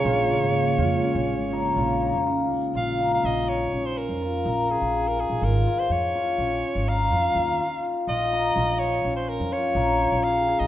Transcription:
X:1
M:11/8
L:1/16
Q:1/4=124
K:Bbm
V:1 name="Soprano saxophone"
d16- d2 z4 | f3 f e2 d3 c B6 A3 B A2 | B3 c d8 f8 z2 | e6 d3 c B2 d6 f3 e |]
V:2 name="Hammered dulcimer"
F2 F4 F2 D4 E2 F2 E2 F4 | F2 E2 F4 D4 F2 E2 F2 A2 A2 | F2 F4 F2 D4 E2 F2 E2 F4 | F2 E2 F4 D4 F2 E2 F2 A2 A2 |]
V:3 name="Vibraphone"
A6 F6 F6 D4 | z16 z6 | z16 z6 | z16 z6 |]
V:4 name="Ambient pad" clef=bass
[D,A,B,]16- [D,A,B,]6 | z16 z6 | z16 z6 | z16 z6 |]
V:5 name="Upright bass" clef=bass
B,,,3 A,,,3 F,,2 z B,,,2 A,,,3 B,,,3 F,,3 B,,,2 | B,,,4 B,,,4 B,,,3 F,,3 B,,,3 B,,,4 B,,, | A,,,2 z2 F,,2 z2 B,,,2 z A,,,3 F,,2 E,,2 z4 | B,,,4 B,,,4 B,,,3 F,,3 B,,,3 B,,,4 B,,, |]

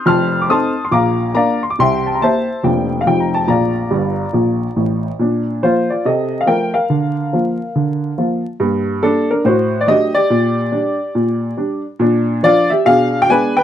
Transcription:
X:1
M:4/4
L:1/16
Q:"Swing" 1/4=141
K:Bb
V:1 name="Upright piano"
[ac'f']3 d' [ac'e']3 c' [fbd']4 [dfb]2 c' d' | [=egc']2 a b [cea]4 g3 f g b a2 | [dfb]12- [dfb]2 z2 | z4 [Fc]2 [Fd]2 [Ae]3 f [Bg]2 [Bf]2- |
[Bf]12- [Bf]2 z2 | z4 [DA]2 [DB]2 [^Fc]3 d [Ge]2 [Gd]2- | [Gd]12- [Gd]2 z2 | [K:Bblyd] z4 [Fd]2 [Ge]2 [^Gf]3 =g [=B^g]2 [B=g]2 |]
V:2 name="Upright piano" clef=bass
[F,,,F,,]4 [CEA]4 [B,,,B,,]4 [B,DB]4 | [C,,C,]4 [B,=EG]4 [F,,,F,,B,DF]4 [F,,,F,,G,_EF]4 | [B,,,B,,]4 [G,,,G,,]4 [B,,,B,,]4 [A,,,A,,]4 | [B,,D]4 [F,B,]4 C,4 [F,A,F]4 |
D,4 [F,B,F]4 D,4 [F,B,F]4 | [G,,B,]4 [G,B,]4 A,,4 [^F,A,D]4 | B,,4 [G,D]4 B,,4 [G,D]4 | [K:Bblyd] [B,,D]4 [F,D]4 [=B,,D]4 [^G,=B,D]4 |]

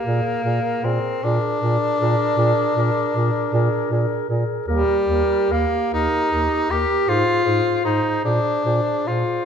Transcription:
X:1
M:12/8
L:1/8
Q:3/8=51
K:Bbmix
V:1 name="Clarinet"
B B B B B B B B B B B B | B B B B B B c c c c c c |]
V:2 name="Clarinet"
A A A A A A A A A A A A | G G G G G G A A A A A A |]
V:3 name="Tenor saxophone"
B,2 C D8 z | G,2 B, E2 G F2 E D2 F |]
V:4 name="Bass clarinet" clef=bass
B,, B,, B,, B,, B,, B,, B,, B,, B,, B,, B,, B,, | E,, E,, E,, E,, E,, E,, A,, A,, A,, B,, B,, B,, |]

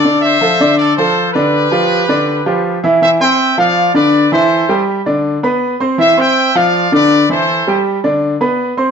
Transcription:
X:1
M:4/4
L:1/8
Q:1/4=162
K:C
V:1 name="Trumpet section"
[Ad] [ce]3 [Ad] [Ac]2 [GB]- | [GB]6- [GB] z | [ce] [eg]2 [df]2 [Bd]2 [Ac]- | [Ac]2 z6 |
[ce] [eg]2 [df]2 [Bd]2 [Ac]- | [Ac]2 z6 |]
V:2 name="Upright piano"
[D,Dd]2 [F,FA] [D,Dd]2 [F,FA]2 [D,Dd]- | [D,Dd] [F,FG]2 [D,Dd]2 [F,FG]2 [E,Ee] | [E,Ee] [Ccc']2 [F,Ff]2 [D,Dd]2 [E,Ee]- | [E,Ee] [G,Gg]2 [D,Dd]2 [B,Bb]2 [Ccc'] |
[E,Ee] [Ccc']2 [F,Ff]2 [D,Dd]2 [E,Ee]- | [E,Ee] [G,Gg]2 [D,Dd]2 [B,Bb]2 [Ccc'] |]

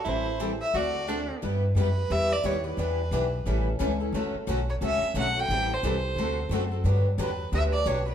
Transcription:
X:1
M:4/4
L:1/16
Q:"Swing" 1/4=177
K:D
V:1 name="Violin"
=c4 z2 e2 d6 z2 | z4 B4 e2 d2 c2 B2- | B8- B2 z6 | z6 c2 e4 f2 g2- |
g2 =c12 z2 | z4 B4 e2 d2 c2 B2 |]
V:2 name="Soprano saxophone"
E4 z4 F4 D4 | z16 | z16 | z16 |
z16 | z16 |]
V:3 name="Steel-string acoustic guitar"
[E,G,=CEA]2 z2 [E,G,CEA] z3 [D,A,CFA]2 z2 [D,A,CFA] z3 | [G,B,EG]2 z2 [G,B,EG] z3 [G,B,EG]2 z2 [G,B,EG] z [B,EG]2 | [E,B,DG]2 z2 [E,B,DG] z3 [E,G,CEA]2 z2 [E,G,CEA] z [CEA]2 | [D,F,A,CF]2 z2 [D,F,A,CF] z3 [D,F,A,CF]2 z2 [D,F,A,CF] z [A,CF]2 |
[E,G,=CEA]2 z2 [E,G,CEA] z3 [D,A,CFA]2 z2 [D,A,CFA] z [CFA]2 | [D,F,B,DG]2 z2 [D,F,B,DG] z3 [D,F,B,DG]2 z2 [D,F,B,DG] z [B,DG]2 |]
V:4 name="Steel-string acoustic guitar"
[E,G,=CEA]2 z2 [E,G,CEA] z3 [D,A,CFA]2 z2 [D,A,CFA] z3 | [G,B,EG]2 z2 [G,B,EG] z3 [G,B,EG]2 z2 [G,B,EG] z3 | [E,G,DEB]2 z2 [E,G,DEB] z3 [E,G,CEA]2 z2 [E,G,CEA] z3 | [D,A,CFA]2 z2 [D,A,CFA] z3 [D,A,CFA]2 z2 [D,A,CFA] z3 |
[E,G,=CEA]2 z2 [E,G,CEA] z3 [D,A,CFA]2 z2 [D,A,CFA] z3 | [D,F,B,DG]2 z2 [D,F,B,DG] z3 [D,F,B,DG]2 z2 [D,F,B,DG] z3 |]
V:5 name="Upright bass" clef=bass
A,,,8 D,,8 | G,,4 F,,4 E,,4 _E,,4 | E,,4 B,,,4 A,,,4 C,,4 | D,,2 z2 B,,,4 C,,2 z2 B,,,4 |
A,,,4 =C,,4 D,,4 F,,4 | G,,4 E,,4 D,,4 B,,,4 |]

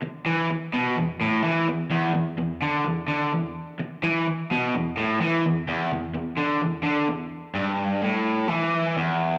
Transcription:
X:1
M:4/4
L:1/8
Q:1/4=128
K:Em
V:1 name="Overdriven electric guitar" clef=bass
z E, z B,, E,, A,, E, E,, | E,, E,, E,, D, E,, D, E,, z | z E, z B,, E,, A,, E, E,, | E,, E,, E,, D, E,, D, E,, z |
G,,2 A,,2 E,2 E,,2 |]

